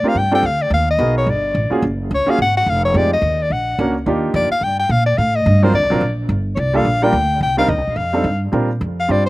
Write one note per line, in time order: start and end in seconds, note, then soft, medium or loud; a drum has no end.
0.03 0.14 C4 medium
0.03 0.14 D4 soft
0.03 0.14 F4 medium
0.03 0.15 G4 soft
0.03 0.15 A#4 medium
0.03 muted upright bass stroke soft
0.08 0.19 F5 medium
0.15 0.42 G2 medium
0.15 0.33 G5 loud
0.31 0.42 C4 medium
0.31 0.42 D4 medium
0.31 0.42 F4 medium
0.31 0.42 G4 medium
0.31 0.42 A4 medium
0.31 0.47 G5 medium
0.43 0.70 D2 medium
0.43 0.63 F5 medium
0.62 0.72 D5 medium
0.70 0.98 D#2 medium
0.70 0.87 F5 medium
0.90 1.15 D#5 medium
0.99 1.26 B1 medium
0.99 1.26 B3 medium
0.99 1.27 D#4 medium
0.99 1.27 F#4 medium
0.99 1.27 G#4 medium
0.99 1.28 A#4 medium
1.18 1.31 C#5 medium
1.27 1.54 G1 medium
1.27 1.72 D5 medium
1.55 1.70 A1 medium
1.70 1.81 A#3 medium
1.70 1.81 C#4 medium
1.70 1.81 F4 medium
1.70 1.82 F#4 medium
1.70 1.82 G#4 medium
1.70 muted upright bass stroke soft
1.82 2.09 F#1 medium
2.11 2.26 C#2 medium
2.11 2.31 C#5 medium
2.26 2.37 A#3 medium
2.26 2.37 C#4 medium
2.26 2.37 F4 medium
2.26 2.38 F#4 medium
2.26 2.38 G#4 medium
2.26 2.40 F5 medium
2.26 muted upright bass stroke soft
2.39 2.65 G#1 medium
2.39 2.55 F#5 loud
2.57 2.71 F#5 medium
2.66 2.93 F1 medium
2.66 2.84 F5 medium
2.85 2.99 C#5 medium
2.94 3.21 F2 medium
2.94 3.09 G#3 medium
2.94 3.09 C4 soft
2.94 3.10 D#4 soft
2.94 3.10 F4 soft
2.94 3.10 G4 medium
2.94 3.12 D5 medium
3.13 3.44 D#5 medium
3.22 3.49 D#2 medium
3.42 3.53 D5 medium
3.50 3.77 A#1 medium
3.50 3.95 F#5 medium
3.79 4.05 C#2 medium
3.79 3.93 A#3 medium
3.79 3.93 C#4 medium
3.79 3.93 D4 medium
3.79 3.94 F#4 medium
3.79 3.94 A#4 medium
4.06 4.33 D#2 medium
4.06 4.47 A#3 medium
4.06 4.47 D4 medium
4.06 4.47 D#4 medium
4.06 4.48 F4 medium
4.06 4.48 G4 medium
4.34 4.49 F2 medium
4.34 4.50 D5 medium
4.50 4.65 F5 medium
4.50 muted upright bass stroke soft
4.61 4.88 G2 medium
4.61 4.78 G5 medium
4.79 4.92 G5 medium
4.89 5.17 A#2 medium
4.89 5.06 F5 medium
5.06 5.19 D5 medium
5.18 5.45 A2 medium
5.18 5.37 F5 medium
5.35 5.65 D#5 medium
5.46 5.73 G2 medium
5.63 5.73 F#3 medium
5.63 5.73 C4 medium
5.63 5.73 D4 medium
5.63 5.73 F4 medium
5.63 5.73 A#4 medium
5.63 5.74 C5 medium
5.73 5.83 D2 medium
5.73 6.15 D5 medium
5.83 5.91 C2 medium
5.90 6.01 A#1 medium
5.90 6.00 F#3 medium
5.90 6.00 C4 medium
5.90 6.01 D4 medium
5.90 6.01 F4 medium
5.90 6.01 A#4 medium
6.01 6.28 A#1 medium
6.29 6.56 G1 medium
6.55 6.84 C2 medium
6.55 6.61 C#5 medium
6.59 6.77 D5 medium
6.73 6.84 G3 medium
6.73 6.84 A#3 medium
6.73 6.84 D4 medium
6.73 6.85 F4 medium
6.73 6.85 A4 medium
6.73 7.05 F5 loud
6.85 7.12 A#1 medium
7.02 7.12 G3 medium
7.02 7.12 A#3 medium
7.02 7.13 D4 medium
7.02 7.13 F4 medium
7.02 7.13 A#4 medium
7.02 7.42 G5 loud
7.13 7.40 D2 medium
7.41 7.68 C2 medium
7.41 7.57 G5 medium
7.57 7.68 G3 medium
7.57 7.68 C4 medium
7.57 7.68 D4 medium
7.57 7.68 D#4 medium
7.57 7.68 A#4 medium
7.57 7.70 F5 medium
7.68 7.78 D#2 medium
7.68 7.98 D#5 medium
7.78 7.87 C2 medium
7.87 7.95 A#1 medium
7.96 8.23 F2 medium
7.96 8.41 F5 medium
8.13 8.23 G3 medium
8.13 8.24 C4 medium
8.13 8.24 D4 medium
8.13 8.24 D#4 medium
8.13 8.24 A4 medium
8.24 8.51 G2 medium
8.52 8.80 A#2 medium
8.52 8.67 G3 medium
8.52 8.67 C4 medium
8.52 8.67 D4 medium
8.52 8.68 F4 medium
8.52 8.68 A#4 medium
8.81 9.08 F2 medium
9.00 9.13 F5 medium
9.08 9.29 G2 medium
9.08 9.23 G3 medium
9.08 9.23 C4 soft
9.08 9.24 D4 medium
9.08 9.24 F4 soft
9.08 9.24 C5 medium
9.08 9.25 D5 medium
9.26 9.29 C5 medium